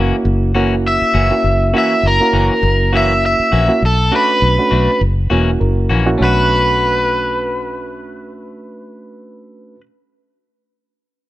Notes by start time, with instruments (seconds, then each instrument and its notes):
Already playing: fingered electric bass F#1, clean electric guitar E3 A#3 C#4 F#4, reed electric piano A#3 C#4 E4 F#4
0.25 fingered electric bass F#1
0.55 clean electric guitar E3 A#3 C#4 F#4, reed electric piano A#3 C#4 E4 F#4
0.88 overdriven electric guitar E5
1.02 muted fingered electric bass stroke
1.14 fingered electric bass F#1, clean electric guitar E3 A#3 C#4 F#4
1.31 reed electric piano A#3 C#4 E4 F#4
1.44 fingered electric bass F#1
1.74 clean electric guitar E3 A#3 C#4 F#4, reed electric piano A#3 C#4 E4 F#4
1.78 overdriven electric guitar E5
2.03 fingered electric bass F#1
2.07 overdriven electric guitar A#4
2.21 reed electric piano A#3 C#4 E4 F#4
2.33 fingered electric bass F#1, clean electric guitar E3 A#3 C#4 F#4
2.63 fingered electric bass F#1
2.92 clean electric guitar E3 A#3 C#4 F#4, reed electric piano A#3 C#4 E4 F#4
2.97 overdriven electric guitar E5
3.26 overdriven electric guitar E5
3.39 muted fingered electric bass stroke
3.52 fingered electric bass A#1, clean electric guitar E3 A#3 C#4 F#4
3.68 reed electric piano A#3 C#4 E4 F#4
3.82 fingered electric bass B1, overdriven electric guitar A4
4.12 reed electric piano A3 C#4 D4 F#4, clean electric guitar A3 D4 F#4
4.16 overdriven electric guitar B4
4.42 fingered electric bass B1
4.58 reed electric piano A3 C#4 D4 F#4
4.71 fingered electric bass B1, clean electric guitar A3 D4 F#4
5.01 fingered electric bass F#1
5.30 fingered electric bass E1, clean electric guitar E3 A#3 C#4 F#4, reed electric piano A#3 C#4 E4 F#4
5.60 fingered electric bass F#1, reed electric piano A#4
5.89 fingered electric bass A#1, clean electric guitar E3 A#3 C#4 F#4
6.06 reed electric piano A#3 C#4 E4 F#4
6.18 fingered electric bass B1, reed electric piano A3 C#4 D4 F#4, clean electric guitar A3
6.24 clean electric guitar F#4, overdriven electric guitar B4